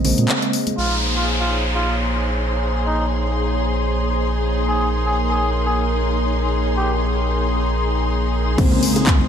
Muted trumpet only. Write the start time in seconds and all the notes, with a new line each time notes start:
0.78 F4
1.16 F4
1.40 F4
1.75 F4
2.86 D#4
4.68 G#4
5.06 G#4
5.30 G#4
5.66 G#4
6.77 G4